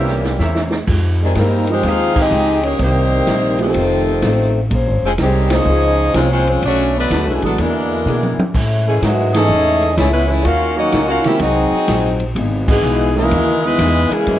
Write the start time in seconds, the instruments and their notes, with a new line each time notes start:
Already playing: upright bass C2, trombone section A#2 E3 G3, steel-string acoustic guitar C3 E3 A#3 C#4, saxophone section E3 A#3 C#4 G4, trumpet section A#4 C5 C#5 E5
0.08 snare
0.24 snare
0.39 upright bass E2, steel-string acoustic guitar C3 E3 A#3 C#4, trumpet section A#4 C5 C#5 E5, snare, hi-hat pedal
0.55 snare
0.71 snare
0.87 upright bass F2, steel-string acoustic guitar F3 G#3 D#4 G4, kick, crash
1.21 trombone section C3 D#3 G#3, saxophone section D#3 G3 C4 G#4
1.35 upright bass G2, steel-string acoustic guitar F3 G#3 D#4 G4, saxophone section G3 C4 D#4 A#4, trombone section A#3, kick, snare, hi-hat pedal, ride
1.67 trombone section D#3 G#3 C4, grand piano F3 G#3 C4 D#4 G4, saxophone section G#3 D#4, ride
1.71 saxophone section G4 C5
1.82 upright bass D#2, steel-string acoustic guitar F3 G#3 D#4, trombone section G#3 C4 F4, saxophone section F5, kick, ride
1.86 saxophone section D#4 G#4 C5, steel-string acoustic guitar G4
2.15 trombone section G#3 C4 D#4, saxophone section G4 G#4, kick, crash
2.19 saxophone section C4 D#5
2.31 upright bass C#2, steel-string acoustic guitar F3 G#3 D#4 G4, hi-hat pedal
2.62 saxophone section A#3 D#4 G4, trombone section C#4, ride
2.66 saxophone section C#5
2.78 upright bass C2, steel-string acoustic guitar C3 G3 A#3 D#4, trombone section D#3 G3 C4, saxophone section A#3 D#4 G4 C5, kick, ride
3.27 upright bass A#1, steel-string acoustic guitar C3 G3 A#3 D#4, kick, snare, hi-hat pedal, ride
3.59 trombone section C3 D#3 A3, grand piano F3 A3 C4 D#4 G4, saxophone section F3 C4 D#4 A4, ride
3.74 upright bass F1, steel-string acoustic guitar F2 D#3 A3 C4, kick, ride
4.22 upright bass A1, steel-string acoustic guitar F2 D#3 A3 C4, kick, snare, hi-hat pedal, ride
4.71 upright bass A#1, steel-string acoustic guitar A#3 C#4 G#4 C5, kick, ride
4.87 upright bass G#1
5.03 upright bass F1, trombone section C#3 F3 G#3, saxophone section F3 C4 C#4 G#4
5.18 upright bass C2, saxophone section D#3 G#3 C4 G4, trombone section G3, steel-string acoustic guitar A#3 C#4 G#4, kick, snare, hi-hat pedal, ride
5.22 steel-string acoustic guitar C5
5.50 grand piano F3 A#3 C4 C#4 G#4, trombone section F3 G#3 D#4, saxophone section C#4 G#4 C5 D#5, snare, ride
5.66 upright bass C#2, steel-string acoustic guitar A#3 C#4 G#4
5.70 steel-string acoustic guitar C5
6.14 upright bass C2, trombone section F3 G#3 C#4, saxophone section G#3 C4 F4 C#5, steel-string acoustic guitar A#3 C#4 G#4 C5, kick, snare, hi-hat pedal, ride
6.31 trombone section F3 G#3 C4, saxophone section G#3 C#4 F4 C5
6.46 trombone section F3 G#3 C#4, saxophone section G#3 C4 F4 C#5, ride
6.62 upright bass B1, steel-string acoustic guitar B2 A3 D4 F#4, saxophone section A3 D4 F#4 C#5, trombone section C#4, kick, ride
6.95 trombone section D3 F#3 B3, saxophone section A3 D4 F#4 B4
7.10 upright bass D2, steel-string acoustic guitar B2 A3 D4 F#4, kick, snare, hi-hat pedal, ride
7.26 upright bass B1, saxophone section E3 A3 C#4 G#4, trombone section G#3
7.42 upright bass A1, trombone section D3 F#3 A3, grand piano E3 G#3 B3 D4 F#4, saxophone section F#3 B3 D4 A4, ride
7.58 upright bass E2, trombone section B2 D3 A#3, steel-string acoustic guitar E3 B3 D4 G#4, saxophone section G#3 D4 E4 A#4, kick, ride
8.06 upright bass B2, steel-string acoustic guitar E3 B3 D4 G#4, hi-hat pedal, mid tom
8.23 high tom
8.38 muted upright bass stroke, high tom
8.54 upright bass A2, steel-string acoustic guitar A2 G#3 C#4 E4, kick, crash
8.86 trombone section C#3 E3 G#3, saxophone section E3 A3 C#4 G#4
9.01 upright bass G#2, steel-string acoustic guitar A2 G#3 C#4 E4, saxophone section D#3 G#3 B3 F#4, trombone section F#3, kick, snare, hi-hat pedal, ride
9.33 grand piano E3 A3 B3 C#4 G#4, trombone section E3 A3 D#4, saxophone section C#4 G#4 A4 D#5, snare, ride
9.49 upright bass E2, steel-string acoustic guitar A2 G#3 C#4
9.54 steel-string acoustic guitar E4
9.82 ride
9.95 upright bass C#2, steel-string acoustic guitar A2, trombone section E3 G#3 C#4, saxophone section A3 E4 G#4 C#5, kick, snare, hi-hat pedal, ride
9.99 steel-string acoustic guitar G#3 C#4 E4
10.11 saxophone section G#3 C#4 E4 B4, trombone section B3
10.27 trombone section E3 G#3 C#4, saxophone section A3 E4 G#4 C#5
10.43 upright bass D#2, steel-string acoustic guitar D#3 A#3, saxophone section C#4 F#4 A#4 F5, trombone section F4, kick, ride
10.48 steel-string acoustic guitar C#4 F#4
10.74 trombone section F#3 A#3 D#4, saxophone section C#4 F#4 A#4 D#5
10.92 upright bass C#2, steel-string acoustic guitar D#3 A#3 C#4 F#4, kick, snare, hi-hat pedal, ride
11.05 saxophone section C#4 F#4 A#4 F5, trombone section F4, snare
11.21 grand piano D#3, trombone section E4, saxophone section G4 A#4 E5, muted upright bass stroke, snare, ride
11.26 grand piano G#3 A#3 C4 F#4, saxophone section C#4
11.38 upright bass C2, steel-string acoustic guitar G#2 F#3, trombone section F#3 C4 D#4, saxophone section C4, kick, ride
11.42 steel-string acoustic guitar C4 D#4, saxophone section F#4 G#4 D#5
11.72 muted upright bass stroke
11.88 upright bass A#1, steel-string acoustic guitar G#2 F#3 C4 D#4, kick, snare, hi-hat pedal, ride
12.20 ride
12.35 upright bass G#1, steel-string acoustic guitar C#3 E3 B3 D#4, kick, ride
12.66 trombone section B2 E3 G#3, saxophone section E3 B3 D#4 G#4, kick, crash
12.83 upright bass B1, steel-string acoustic guitar C#3 E3 B3 D#4, hi-hat pedal
13.14 trombone section B2 E3 A#3, grand piano E3 G#3 B3 C#4 D#4, saxophone section G#3 D#4 E4 A#4
13.30 upright bass D#2, steel-string acoustic guitar C#3 E3 B3 D#4, kick, ride
13.63 trombone section E3 G#3 B3, saxophone section G#3 D#4 E4 B4
13.79 upright bass E2, steel-string acoustic guitar C#3 E3 B3 D#4, kick, snare, hi-hat pedal, ride
14.11 trombone section C#3 E3 G#3, saxophone section E3 A#3 C#4 G#4, muted upright bass stroke, ride
14.26 upright bass F#2, steel-string acoustic guitar F#3 A#3 E4 G#4, kick, ride